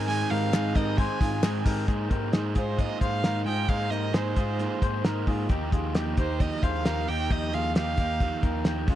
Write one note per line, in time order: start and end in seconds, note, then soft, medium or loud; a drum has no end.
0.00 0.22 G#2 medium
0.07 0.53 G#2 medium
0.07 0.98 D#3 medium
0.07 0.51 G#3 medium
0.07 0.53 C4 medium
0.07 0.54 D#4 medium
0.07 0.55 G#4 medium
0.07 0.32 G#5 loud
0.07 hi-hat pedal medium
0.07 open hi-hat medium
0.30 0.49 G#2 loud
0.30 0.53 G4 medium
0.30 0.53 A#4 medium
0.30 0.77 F5 medium
0.30 hi-hat pedal medium
0.30 open hi-hat medium
0.52 0.72 G#2 loud
0.52 0.75 G#3 medium
0.52 0.75 C4 medium
0.52 0.75 D#4 medium
0.52 0.73 G#4 medium
0.52 snare loud
0.52 clap loud
0.52 hi-hat pedal medium
0.52 open hi-hat medium
0.74 1.03 G#2 loud
0.74 0.98 G#3 soft
0.74 0.97 C4 soft
0.74 0.98 D#4 soft
0.74 0.99 G4 medium
0.74 0.97 G#4 medium
0.74 0.98 A#4 medium
0.74 0.99 D#5 medium
0.74 kick loud
0.74 hi-hat pedal medium
0.74 open hi-hat medium
0.98 1.43 G#2 medium
0.98 1.88 D#3 medium
0.98 1.43 G#3 medium
0.98 1.44 C4 medium
0.98 1.45 D#4 medium
0.98 1.46 G#4 medium
0.98 1.20 C5 medium
0.98 1.65 G#5 medium
0.98 kick loud
0.98 hi-hat pedal medium
0.98 open hi-hat medium
1.21 1.39 G#2 loud
1.21 1.43 F4 medium
1.21 1.42 G#4 medium
1.21 kick loud
1.21 hi-hat pedal medium
1.21 open hi-hat medium
1.43 1.61 G#2 loud
1.43 1.66 G#3 medium
1.43 1.66 C4 medium
1.43 1.65 D#4 medium
1.43 snare loud
1.43 clap medium
1.43 hi-hat pedal medium
1.43 open hi-hat medium
1.47 1.64 G#4 medium
1.65 1.84 G#2 medium
1.65 1.87 G#3 soft
1.65 1.89 C4 medium
1.65 1.88 D#4 medium
1.65 1.88 G4 medium
1.65 1.88 G#4 medium
1.65 1.87 A#4 medium
1.65 kick medium
1.65 hi-hat pedal medium
1.65 open hi-hat medium
1.88 2.07 G#2 medium
1.88 2.33 G#3 medium
1.88 2.33 A#3 medium
1.88 2.34 D#4 medium
1.88 2.34 G#4 medium
1.88 2.35 C5 medium
1.88 kick loud
1.88 closed hi-hat medium
2.10 2.29 G#2 medium
2.10 2.33 G4 medium
2.10 2.33 A#4 medium
2.10 kick medium
2.10 closed hi-hat medium
2.33 2.52 G#2 loud
2.33 2.56 A#3 medium
2.33 2.56 D#4 medium
2.33 2.57 G#4 medium
2.33 snare loud
2.33 closed hi-hat medium
2.37 2.54 C5 medium
2.55 2.84 G#2 medium
2.55 2.98 F4 medium
2.55 2.79 G#4 soft
2.55 2.78 C5 medium
2.55 2.82 C5 medium
2.55 kick medium
2.55 closed hi-hat medium
2.59 2.79 D#4 soft
2.78 3.23 G#3 medium
2.78 3.23 A#3 medium
2.78 3.24 D#4 medium
2.78 3.24 G#4 medium
2.78 3.25 C5 medium
2.78 3.02 D#5 medium
2.78 kick medium
2.78 closed hi-hat medium
3.01 3.20 G#2 medium
3.01 3.24 G#4 medium
3.01 3.23 C5 medium
3.01 3.44 F5 loud
3.01 kick medium
3.01 closed hi-hat medium
3.23 3.42 G#2 medium
3.23 3.46 A#3 medium
3.23 3.47 D#4 medium
3.23 3.46 G#4 medium
3.23 3.46 A#4 medium
3.23 snare loud
3.23 closed hi-hat medium
3.27 3.44 C5 medium
3.45 3.64 G#2 loud
3.45 3.69 F4 soft
3.45 3.68 G#4 soft
3.45 3.68 C5 medium
3.45 3.70 G5 medium
3.45 open hi-hat medium
3.49 3.68 D#4 soft
3.68 3.87 G#2 medium
3.68 4.13 G#3 medium
3.68 4.12 A#3 medium
3.68 4.13 D#4 medium
3.68 4.14 G#4 medium
3.68 4.15 C5 medium
3.68 3.92 F5 loud
3.68 kick loud
3.68 closed hi-hat medium
3.90 4.09 G#2 medium
3.90 4.14 G4 medium
3.90 4.14 A#4 medium
3.90 4.16 D#5 medium
3.90 closed hi-hat medium
4.12 4.32 G#2 medium
4.12 4.36 A#3 medium
4.12 4.36 D#4 medium
4.12 4.36 G#4 medium
4.12 5.04 C5 medium
4.12 4.34 C5 medium
4.12 snare loud
4.12 closed hi-hat medium
4.36 4.64 G#2 medium
4.36 4.59 D#4 soft
4.36 4.80 F4 medium
4.36 4.60 G#4 medium
4.36 4.59 C5 medium
4.36 kick medium
4.36 closed hi-hat medium
4.59 5.04 G#3 medium
4.59 5.04 A#3 medium
4.59 5.05 D#4 medium
4.59 5.05 G#4 medium
4.59 5.05 C5 medium
4.59 closed hi-hat medium
4.82 5.00 G#2 medium
4.82 5.05 G#4 medium
4.82 5.05 C5 medium
4.82 kick medium
4.82 closed hi-hat medium
5.04 5.23 G#2 medium
5.04 5.51 A#3 medium
5.04 5.52 D#4 medium
5.04 5.51 G#4 medium
5.04 5.27 A#4 medium
5.04 5.51 C5 medium
5.04 snare loud
5.04 closed hi-hat medium
5.27 5.46 G#2 medium
5.27 5.50 F4 medium
5.27 5.49 G#4 medium
5.27 kick medium
5.27 open hi-hat medium
5.49 5.68 D#2 loud
5.49 5.95 D#3 medium
5.49 5.94 F3 medium
5.49 5.95 A#3 medium
5.49 5.96 D#4 medium
5.49 5.96 G4 loud
5.49 kick loud
5.49 closed hi-hat medium
5.72 5.91 D#2 medium
5.72 5.95 F4 medium
5.72 5.95 G#4 medium
5.72 kick medium
5.72 closed hi-hat medium
5.94 6.13 D#2 medium
5.94 6.17 F3 medium
5.94 6.18 A#3 medium
5.94 6.18 D#4 medium
5.94 6.17 G4 medium
5.94 snare loud
5.94 closed hi-hat medium
6.17 6.45 D#2 medium
6.17 6.39 A#3 soft
6.17 6.40 D#4 medium
6.17 6.40 G4 medium
6.17 6.42 C5 medium
6.17 kick medium
6.17 closed hi-hat medium
6.40 6.85 D#3 medium
6.40 6.84 F3 medium
6.40 6.85 A#3 medium
6.40 6.86 D#4 medium
6.40 6.86 G4 medium
6.40 6.64 D#5 medium
6.40 kick medium
6.40 closed hi-hat medium
6.63 6.81 D#2 medium
6.63 6.86 G#4 medium
6.63 6.85 C5 medium
6.63 7.10 F5 medium
6.63 kick medium
6.63 closed hi-hat medium
6.85 7.04 D#2 medium
6.85 7.07 F3 medium
6.85 7.08 A#3 medium
6.85 7.09 D#4 medium
6.85 7.06 G4 medium
6.85 7.08 A#4 medium
6.85 snare loud
6.85 closed hi-hat medium
7.07 7.27 D#2 medium
7.07 7.31 A#3 soft
7.07 7.31 D#4 soft
7.07 7.30 G4 medium
7.07 7.33 G5 medium
7.07 open hi-hat medium
7.30 7.49 D#2 loud
7.30 7.76 D#3 medium
7.30 7.75 F3 medium
7.30 7.75 A#3 medium
7.30 7.76 D#4 medium
7.30 7.77 G4 medium
7.30 7.56 D#5 medium
7.30 kick loud
7.30 closed hi-hat medium
7.53 7.72 D#2 medium
7.53 7.76 F4 medium
7.53 7.76 G#4 medium
7.53 7.76 F5 medium
7.53 closed hi-hat medium
7.75 7.94 D#2 medium
7.75 7.98 F3 medium
7.75 7.98 A#3 medium
7.75 7.98 D#4 medium
7.75 7.96 G4 medium
7.75 8.62 F5 loud
7.75 snare loud
7.75 closed hi-hat medium
7.97 8.26 D#2 medium
7.97 8.21 A#3 soft
7.97 8.21 D#4 soft
7.97 8.20 G4 medium
7.97 kick medium
7.97 closed hi-hat medium
8.20 8.66 D#3 medium
8.20 8.64 F3 medium
8.20 8.65 A#3 medium
8.20 8.66 D#4 medium
8.20 8.67 G4 medium
8.20 kick medium
8.20 closed hi-hat medium
8.43 8.62 D#2 medium
8.43 8.65 G4 medium
8.43 8.66 A#4 medium
8.43 kick medium
8.43 closed hi-hat medium
8.64 8.84 D#2 loud
8.64 8.88 F3 medium
8.64 8.88 A#3 medium
8.64 8.88 D#4 medium
8.64 8.86 G4 medium
8.64 snare loud
8.64 closed hi-hat medium
8.87 8.95 C#2 medium
8.87 8.95 G#3 soft
8.87 8.95 C#4 soft
8.87 8.95 F4 medium
8.87 8.95 G#4 medium
8.87 kick loud
8.87 open hi-hat medium